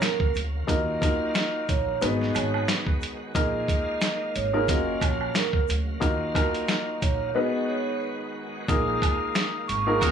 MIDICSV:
0, 0, Header, 1, 7, 480
1, 0, Start_track
1, 0, Tempo, 666667
1, 492, Time_signature, 4, 2, 24, 8
1, 7282, End_track
2, 0, Start_track
2, 0, Title_t, "Vibraphone"
2, 0, Program_c, 0, 11
2, 12, Note_on_c, 0, 70, 87
2, 228, Note_off_c, 0, 70, 0
2, 487, Note_on_c, 0, 75, 122
2, 1181, Note_off_c, 0, 75, 0
2, 1214, Note_on_c, 0, 73, 83
2, 1429, Note_off_c, 0, 73, 0
2, 1453, Note_on_c, 0, 75, 83
2, 1574, Note_off_c, 0, 75, 0
2, 1594, Note_on_c, 0, 75, 73
2, 1686, Note_off_c, 0, 75, 0
2, 1694, Note_on_c, 0, 73, 70
2, 1909, Note_off_c, 0, 73, 0
2, 1934, Note_on_c, 0, 71, 85
2, 2150, Note_off_c, 0, 71, 0
2, 2410, Note_on_c, 0, 75, 117
2, 3102, Note_off_c, 0, 75, 0
2, 3134, Note_on_c, 0, 73, 84
2, 3349, Note_off_c, 0, 73, 0
2, 3374, Note_on_c, 0, 75, 94
2, 3495, Note_off_c, 0, 75, 0
2, 3503, Note_on_c, 0, 75, 79
2, 3600, Note_off_c, 0, 75, 0
2, 3607, Note_on_c, 0, 73, 66
2, 3826, Note_off_c, 0, 73, 0
2, 3849, Note_on_c, 0, 70, 87
2, 4066, Note_off_c, 0, 70, 0
2, 4329, Note_on_c, 0, 75, 111
2, 5022, Note_off_c, 0, 75, 0
2, 5049, Note_on_c, 0, 73, 76
2, 5267, Note_off_c, 0, 73, 0
2, 5286, Note_on_c, 0, 75, 91
2, 5411, Note_off_c, 0, 75, 0
2, 5425, Note_on_c, 0, 75, 72
2, 5520, Note_off_c, 0, 75, 0
2, 5529, Note_on_c, 0, 73, 69
2, 5747, Note_off_c, 0, 73, 0
2, 5772, Note_on_c, 0, 71, 83
2, 5988, Note_off_c, 0, 71, 0
2, 6255, Note_on_c, 0, 87, 101
2, 6945, Note_off_c, 0, 87, 0
2, 6966, Note_on_c, 0, 85, 76
2, 7185, Note_off_c, 0, 85, 0
2, 7214, Note_on_c, 0, 87, 93
2, 7282, Note_off_c, 0, 87, 0
2, 7282, End_track
3, 0, Start_track
3, 0, Title_t, "Horn section"
3, 0, Program_c, 1, 61
3, 7200, Note_on_c, 1, 58, 102
3, 7200, Note_on_c, 1, 66, 102
3, 7200, Note_on_c, 1, 70, 118
3, 7282, Note_off_c, 1, 58, 0
3, 7282, Note_off_c, 1, 66, 0
3, 7282, Note_off_c, 1, 70, 0
3, 7282, End_track
4, 0, Start_track
4, 0, Title_t, "Grand piano"
4, 0, Program_c, 2, 0
4, 0, Note_on_c, 2, 58, 91
4, 0, Note_on_c, 2, 61, 84
4, 0, Note_on_c, 2, 65, 87
4, 0, Note_on_c, 2, 66, 85
4, 0, Note_on_c, 2, 70, 110
4, 202, Note_off_c, 2, 58, 0
4, 203, Note_off_c, 2, 61, 0
4, 204, Note_off_c, 2, 65, 0
4, 205, Note_off_c, 2, 66, 0
4, 206, Note_off_c, 2, 70, 0
4, 482, Note_on_c, 2, 58, 92
4, 483, Note_on_c, 2, 63, 83
4, 486, Note_on_c, 2, 65, 85
4, 487, Note_on_c, 2, 66, 85
4, 489, Note_on_c, 2, 70, 102
4, 710, Note_off_c, 2, 58, 0
4, 711, Note_off_c, 2, 63, 0
4, 712, Note_off_c, 2, 65, 0
4, 713, Note_off_c, 2, 66, 0
4, 714, Note_off_c, 2, 70, 0
4, 727, Note_on_c, 2, 58, 97
4, 729, Note_on_c, 2, 63, 82
4, 730, Note_on_c, 2, 65, 82
4, 732, Note_on_c, 2, 66, 77
4, 734, Note_on_c, 2, 70, 111
4, 1441, Note_off_c, 2, 63, 0
4, 1442, Note_off_c, 2, 66, 0
4, 1450, Note_off_c, 2, 58, 0
4, 1450, Note_on_c, 2, 59, 100
4, 1451, Note_off_c, 2, 65, 0
4, 1452, Note_on_c, 2, 63, 82
4, 1453, Note_off_c, 2, 70, 0
4, 1453, Note_on_c, 2, 66, 86
4, 1454, Note_on_c, 2, 68, 82
4, 1456, Note_on_c, 2, 71, 98
4, 2344, Note_off_c, 2, 59, 0
4, 2345, Note_off_c, 2, 63, 0
4, 2346, Note_off_c, 2, 66, 0
4, 2346, Note_off_c, 2, 68, 0
4, 2347, Note_off_c, 2, 71, 0
4, 2409, Note_on_c, 2, 58, 98
4, 2411, Note_on_c, 2, 63, 83
4, 2412, Note_on_c, 2, 65, 83
4, 2414, Note_on_c, 2, 68, 86
4, 2415, Note_on_c, 2, 70, 100
4, 3190, Note_off_c, 2, 58, 0
4, 3191, Note_off_c, 2, 63, 0
4, 3192, Note_off_c, 2, 65, 0
4, 3193, Note_off_c, 2, 68, 0
4, 3193, Note_off_c, 2, 70, 0
4, 3263, Note_on_c, 2, 58, 86
4, 3264, Note_on_c, 2, 63, 87
4, 3266, Note_on_c, 2, 65, 86
4, 3268, Note_on_c, 2, 68, 84
4, 3269, Note_on_c, 2, 70, 108
4, 3363, Note_off_c, 2, 58, 0
4, 3366, Note_off_c, 2, 65, 0
4, 3369, Note_off_c, 2, 70, 0
4, 3373, Note_on_c, 2, 58, 91
4, 3375, Note_on_c, 2, 61, 81
4, 3377, Note_on_c, 2, 65, 88
4, 3378, Note_on_c, 2, 66, 86
4, 3380, Note_on_c, 2, 70, 109
4, 3398, Note_off_c, 2, 63, 0
4, 3399, Note_off_c, 2, 68, 0
4, 4043, Note_off_c, 2, 58, 0
4, 4043, Note_off_c, 2, 61, 0
4, 4044, Note_off_c, 2, 65, 0
4, 4045, Note_off_c, 2, 66, 0
4, 4046, Note_off_c, 2, 70, 0
4, 4321, Note_on_c, 2, 58, 91
4, 4323, Note_on_c, 2, 63, 83
4, 4325, Note_on_c, 2, 65, 87
4, 4327, Note_on_c, 2, 66, 86
4, 4328, Note_on_c, 2, 70, 100
4, 4550, Note_off_c, 2, 58, 0
4, 4551, Note_off_c, 2, 63, 0
4, 4552, Note_off_c, 2, 65, 0
4, 4553, Note_off_c, 2, 66, 0
4, 4553, Note_off_c, 2, 70, 0
4, 4567, Note_on_c, 2, 58, 99
4, 4569, Note_on_c, 2, 63, 84
4, 4570, Note_on_c, 2, 65, 85
4, 4572, Note_on_c, 2, 66, 79
4, 4574, Note_on_c, 2, 70, 114
4, 5280, Note_off_c, 2, 63, 0
4, 5281, Note_off_c, 2, 66, 0
4, 5289, Note_on_c, 2, 59, 100
4, 5290, Note_off_c, 2, 58, 0
4, 5291, Note_off_c, 2, 65, 0
4, 5291, Note_on_c, 2, 63, 82
4, 5292, Note_on_c, 2, 66, 88
4, 5293, Note_off_c, 2, 70, 0
4, 5293, Note_on_c, 2, 68, 79
4, 5296, Note_on_c, 2, 71, 99
4, 6184, Note_off_c, 2, 59, 0
4, 6185, Note_off_c, 2, 63, 0
4, 6185, Note_off_c, 2, 66, 0
4, 6186, Note_off_c, 2, 68, 0
4, 6187, Note_off_c, 2, 71, 0
4, 6250, Note_on_c, 2, 58, 94
4, 6251, Note_on_c, 2, 63, 83
4, 6253, Note_on_c, 2, 65, 80
4, 6254, Note_on_c, 2, 68, 86
4, 6256, Note_on_c, 2, 70, 96
4, 7031, Note_off_c, 2, 58, 0
4, 7031, Note_off_c, 2, 63, 0
4, 7032, Note_off_c, 2, 65, 0
4, 7033, Note_off_c, 2, 68, 0
4, 7034, Note_off_c, 2, 70, 0
4, 7103, Note_on_c, 2, 58, 85
4, 7105, Note_on_c, 2, 63, 89
4, 7106, Note_on_c, 2, 65, 90
4, 7108, Note_on_c, 2, 68, 84
4, 7109, Note_on_c, 2, 70, 105
4, 7202, Note_off_c, 2, 58, 0
4, 7204, Note_off_c, 2, 65, 0
4, 7208, Note_off_c, 2, 70, 0
4, 7213, Note_on_c, 2, 58, 94
4, 7214, Note_on_c, 2, 61, 85
4, 7215, Note_on_c, 2, 65, 89
4, 7217, Note_on_c, 2, 66, 88
4, 7219, Note_on_c, 2, 70, 109
4, 7238, Note_off_c, 2, 63, 0
4, 7240, Note_off_c, 2, 68, 0
4, 7282, Note_off_c, 2, 58, 0
4, 7282, Note_off_c, 2, 61, 0
4, 7282, Note_off_c, 2, 65, 0
4, 7282, Note_off_c, 2, 66, 0
4, 7282, Note_off_c, 2, 70, 0
4, 7282, End_track
5, 0, Start_track
5, 0, Title_t, "Tonewheel organ"
5, 0, Program_c, 3, 16
5, 0, Note_on_c, 3, 49, 68
5, 0, Note_on_c, 3, 54, 63
5, 0, Note_on_c, 3, 58, 58
5, 0, Note_on_c, 3, 77, 76
5, 477, Note_off_c, 3, 49, 0
5, 485, Note_on_c, 3, 51, 70
5, 1427, Note_off_c, 3, 54, 0
5, 1430, Note_off_c, 3, 58, 0
5, 1430, Note_off_c, 3, 77, 0
5, 1448, Note_on_c, 3, 56, 65
5, 1448, Note_on_c, 3, 66, 78
5, 1449, Note_on_c, 3, 59, 67
5, 2400, Note_off_c, 3, 56, 0
5, 2401, Note_off_c, 3, 59, 0
5, 2401, Note_off_c, 3, 66, 0
5, 2408, Note_on_c, 3, 56, 69
5, 2408, Note_on_c, 3, 58, 64
5, 2409, Note_on_c, 3, 77, 76
5, 3340, Note_off_c, 3, 51, 0
5, 3352, Note_off_c, 3, 58, 0
5, 3360, Note_on_c, 3, 49, 66
5, 3360, Note_on_c, 3, 54, 60
5, 3360, Note_on_c, 3, 58, 65
5, 3361, Note_off_c, 3, 56, 0
5, 4316, Note_off_c, 3, 49, 0
5, 4333, Note_on_c, 3, 51, 75
5, 5262, Note_off_c, 3, 77, 0
5, 5267, Note_off_c, 3, 54, 0
5, 5267, Note_off_c, 3, 58, 0
5, 5295, Note_on_c, 3, 56, 66
5, 5295, Note_on_c, 3, 59, 65
5, 5296, Note_on_c, 3, 66, 76
5, 6234, Note_off_c, 3, 51, 0
5, 6244, Note_off_c, 3, 56, 0
5, 6244, Note_off_c, 3, 59, 0
5, 6245, Note_off_c, 3, 66, 0
5, 6265, Note_on_c, 3, 56, 64
5, 6265, Note_on_c, 3, 58, 61
5, 6266, Note_on_c, 3, 51, 71
5, 6266, Note_on_c, 3, 77, 82
5, 7197, Note_on_c, 3, 49, 69
5, 7197, Note_on_c, 3, 54, 61
5, 7209, Note_off_c, 3, 56, 0
5, 7210, Note_off_c, 3, 51, 0
5, 7282, Note_off_c, 3, 49, 0
5, 7282, Note_off_c, 3, 54, 0
5, 7282, Note_off_c, 3, 58, 0
5, 7282, Note_off_c, 3, 77, 0
5, 7282, End_track
6, 0, Start_track
6, 0, Title_t, "Upright bass"
6, 0, Program_c, 4, 32
6, 257, Note_on_c, 4, 38, 88
6, 443, Note_off_c, 4, 38, 0
6, 495, Note_on_c, 4, 39, 108
6, 682, Note_off_c, 4, 39, 0
6, 1219, Note_on_c, 4, 34, 91
6, 1404, Note_off_c, 4, 34, 0
6, 1456, Note_on_c, 4, 32, 99
6, 1643, Note_off_c, 4, 32, 0
6, 1696, Note_on_c, 4, 32, 92
6, 1883, Note_off_c, 4, 32, 0
6, 2415, Note_on_c, 4, 34, 105
6, 2602, Note_off_c, 4, 34, 0
6, 3137, Note_on_c, 4, 32, 87
6, 3375, Note_off_c, 4, 32, 0
6, 3375, Note_on_c, 4, 30, 107
6, 3562, Note_off_c, 4, 30, 0
6, 3613, Note_on_c, 4, 34, 99
6, 3801, Note_off_c, 4, 34, 0
6, 4098, Note_on_c, 4, 38, 90
6, 4284, Note_off_c, 4, 38, 0
6, 4335, Note_on_c, 4, 39, 111
6, 4522, Note_off_c, 4, 39, 0
6, 5059, Note_on_c, 4, 34, 90
6, 5244, Note_off_c, 4, 34, 0
6, 6256, Note_on_c, 4, 34, 113
6, 6442, Note_off_c, 4, 34, 0
6, 6978, Note_on_c, 4, 32, 88
6, 7217, Note_off_c, 4, 32, 0
6, 7217, Note_on_c, 4, 30, 108
6, 7282, Note_off_c, 4, 30, 0
6, 7282, End_track
7, 0, Start_track
7, 0, Title_t, "Drums"
7, 10, Note_on_c, 9, 82, 59
7, 13, Note_on_c, 9, 40, 99
7, 18, Note_on_c, 9, 38, 123
7, 21, Note_on_c, 9, 42, 104
7, 82, Note_off_c, 9, 82, 0
7, 85, Note_off_c, 9, 40, 0
7, 90, Note_off_c, 9, 38, 0
7, 93, Note_off_c, 9, 42, 0
7, 144, Note_on_c, 9, 36, 107
7, 216, Note_off_c, 9, 36, 0
7, 249, Note_on_c, 9, 82, 46
7, 264, Note_on_c, 9, 42, 77
7, 321, Note_off_c, 9, 82, 0
7, 336, Note_off_c, 9, 42, 0
7, 492, Note_on_c, 9, 36, 117
7, 494, Note_on_c, 9, 82, 69
7, 498, Note_on_c, 9, 42, 90
7, 564, Note_off_c, 9, 36, 0
7, 566, Note_off_c, 9, 82, 0
7, 570, Note_off_c, 9, 42, 0
7, 733, Note_on_c, 9, 36, 104
7, 736, Note_on_c, 9, 82, 53
7, 741, Note_on_c, 9, 42, 75
7, 805, Note_off_c, 9, 36, 0
7, 808, Note_off_c, 9, 82, 0
7, 813, Note_off_c, 9, 42, 0
7, 971, Note_on_c, 9, 82, 71
7, 972, Note_on_c, 9, 40, 96
7, 977, Note_on_c, 9, 38, 120
7, 978, Note_on_c, 9, 42, 84
7, 1043, Note_off_c, 9, 82, 0
7, 1044, Note_off_c, 9, 40, 0
7, 1049, Note_off_c, 9, 38, 0
7, 1050, Note_off_c, 9, 42, 0
7, 1215, Note_on_c, 9, 82, 53
7, 1216, Note_on_c, 9, 36, 100
7, 1216, Note_on_c, 9, 42, 70
7, 1287, Note_off_c, 9, 82, 0
7, 1288, Note_off_c, 9, 36, 0
7, 1288, Note_off_c, 9, 42, 0
7, 1451, Note_on_c, 9, 82, 74
7, 1457, Note_on_c, 9, 42, 97
7, 1523, Note_off_c, 9, 82, 0
7, 1529, Note_off_c, 9, 42, 0
7, 1594, Note_on_c, 9, 38, 35
7, 1666, Note_off_c, 9, 38, 0
7, 1692, Note_on_c, 9, 76, 69
7, 1692, Note_on_c, 9, 82, 49
7, 1698, Note_on_c, 9, 42, 77
7, 1764, Note_off_c, 9, 76, 0
7, 1764, Note_off_c, 9, 82, 0
7, 1770, Note_off_c, 9, 42, 0
7, 1830, Note_on_c, 9, 76, 73
7, 1902, Note_off_c, 9, 76, 0
7, 1929, Note_on_c, 9, 82, 57
7, 1932, Note_on_c, 9, 40, 100
7, 1936, Note_on_c, 9, 38, 124
7, 1939, Note_on_c, 9, 42, 109
7, 2001, Note_off_c, 9, 82, 0
7, 2004, Note_off_c, 9, 40, 0
7, 2008, Note_off_c, 9, 38, 0
7, 2011, Note_off_c, 9, 42, 0
7, 2063, Note_on_c, 9, 36, 103
7, 2135, Note_off_c, 9, 36, 0
7, 2167, Note_on_c, 9, 82, 45
7, 2182, Note_on_c, 9, 42, 78
7, 2239, Note_off_c, 9, 82, 0
7, 2254, Note_off_c, 9, 42, 0
7, 2412, Note_on_c, 9, 36, 120
7, 2413, Note_on_c, 9, 82, 70
7, 2416, Note_on_c, 9, 42, 87
7, 2484, Note_off_c, 9, 36, 0
7, 2485, Note_off_c, 9, 82, 0
7, 2488, Note_off_c, 9, 42, 0
7, 2652, Note_on_c, 9, 36, 99
7, 2655, Note_on_c, 9, 82, 53
7, 2660, Note_on_c, 9, 42, 78
7, 2724, Note_off_c, 9, 36, 0
7, 2727, Note_off_c, 9, 82, 0
7, 2732, Note_off_c, 9, 42, 0
7, 2890, Note_on_c, 9, 82, 72
7, 2891, Note_on_c, 9, 40, 96
7, 2895, Note_on_c, 9, 38, 120
7, 2896, Note_on_c, 9, 42, 85
7, 2962, Note_off_c, 9, 82, 0
7, 2963, Note_off_c, 9, 40, 0
7, 2967, Note_off_c, 9, 38, 0
7, 2968, Note_off_c, 9, 42, 0
7, 3134, Note_on_c, 9, 82, 52
7, 3136, Note_on_c, 9, 42, 70
7, 3206, Note_off_c, 9, 82, 0
7, 3208, Note_off_c, 9, 42, 0
7, 3371, Note_on_c, 9, 82, 75
7, 3372, Note_on_c, 9, 36, 97
7, 3376, Note_on_c, 9, 42, 97
7, 3443, Note_off_c, 9, 82, 0
7, 3444, Note_off_c, 9, 36, 0
7, 3448, Note_off_c, 9, 42, 0
7, 3610, Note_on_c, 9, 36, 93
7, 3611, Note_on_c, 9, 76, 69
7, 3611, Note_on_c, 9, 82, 49
7, 3617, Note_on_c, 9, 42, 76
7, 3682, Note_off_c, 9, 36, 0
7, 3683, Note_off_c, 9, 76, 0
7, 3683, Note_off_c, 9, 82, 0
7, 3689, Note_off_c, 9, 42, 0
7, 3750, Note_on_c, 9, 76, 74
7, 3822, Note_off_c, 9, 76, 0
7, 3848, Note_on_c, 9, 82, 57
7, 3852, Note_on_c, 9, 40, 97
7, 3856, Note_on_c, 9, 38, 126
7, 3859, Note_on_c, 9, 42, 106
7, 3920, Note_off_c, 9, 82, 0
7, 3924, Note_off_c, 9, 40, 0
7, 3928, Note_off_c, 9, 38, 0
7, 3931, Note_off_c, 9, 42, 0
7, 3983, Note_on_c, 9, 36, 104
7, 4055, Note_off_c, 9, 36, 0
7, 4088, Note_on_c, 9, 82, 46
7, 4103, Note_on_c, 9, 42, 78
7, 4160, Note_off_c, 9, 82, 0
7, 4175, Note_off_c, 9, 42, 0
7, 4332, Note_on_c, 9, 36, 120
7, 4333, Note_on_c, 9, 82, 69
7, 4337, Note_on_c, 9, 42, 90
7, 4404, Note_off_c, 9, 36, 0
7, 4405, Note_off_c, 9, 82, 0
7, 4409, Note_off_c, 9, 42, 0
7, 4573, Note_on_c, 9, 36, 103
7, 4575, Note_on_c, 9, 76, 73
7, 4575, Note_on_c, 9, 82, 53
7, 4580, Note_on_c, 9, 42, 75
7, 4645, Note_off_c, 9, 36, 0
7, 4647, Note_off_c, 9, 76, 0
7, 4647, Note_off_c, 9, 82, 0
7, 4652, Note_off_c, 9, 42, 0
7, 4712, Note_on_c, 9, 42, 48
7, 4784, Note_off_c, 9, 42, 0
7, 4810, Note_on_c, 9, 82, 74
7, 4813, Note_on_c, 9, 40, 96
7, 4817, Note_on_c, 9, 38, 118
7, 4818, Note_on_c, 9, 42, 85
7, 4882, Note_off_c, 9, 82, 0
7, 4885, Note_off_c, 9, 40, 0
7, 4889, Note_off_c, 9, 38, 0
7, 4890, Note_off_c, 9, 42, 0
7, 5054, Note_on_c, 9, 82, 54
7, 5056, Note_on_c, 9, 36, 98
7, 5057, Note_on_c, 9, 42, 68
7, 5126, Note_off_c, 9, 82, 0
7, 5128, Note_off_c, 9, 36, 0
7, 5129, Note_off_c, 9, 42, 0
7, 6253, Note_on_c, 9, 36, 121
7, 6254, Note_on_c, 9, 82, 70
7, 6259, Note_on_c, 9, 42, 89
7, 6325, Note_off_c, 9, 36, 0
7, 6326, Note_off_c, 9, 82, 0
7, 6331, Note_off_c, 9, 42, 0
7, 6494, Note_on_c, 9, 36, 102
7, 6496, Note_on_c, 9, 76, 77
7, 6496, Note_on_c, 9, 82, 54
7, 6502, Note_on_c, 9, 42, 79
7, 6566, Note_off_c, 9, 36, 0
7, 6568, Note_off_c, 9, 76, 0
7, 6568, Note_off_c, 9, 82, 0
7, 6574, Note_off_c, 9, 42, 0
7, 6732, Note_on_c, 9, 82, 72
7, 6734, Note_on_c, 9, 40, 96
7, 6738, Note_on_c, 9, 38, 120
7, 6739, Note_on_c, 9, 42, 85
7, 6804, Note_off_c, 9, 82, 0
7, 6806, Note_off_c, 9, 40, 0
7, 6810, Note_off_c, 9, 38, 0
7, 6811, Note_off_c, 9, 42, 0
7, 6976, Note_on_c, 9, 82, 57
7, 6978, Note_on_c, 9, 42, 71
7, 7048, Note_off_c, 9, 82, 0
7, 7050, Note_off_c, 9, 42, 0
7, 7213, Note_on_c, 9, 82, 77
7, 7214, Note_on_c, 9, 36, 96
7, 7218, Note_on_c, 9, 42, 100
7, 7282, Note_off_c, 9, 36, 0
7, 7282, Note_off_c, 9, 42, 0
7, 7282, Note_off_c, 9, 82, 0
7, 7282, End_track
0, 0, End_of_file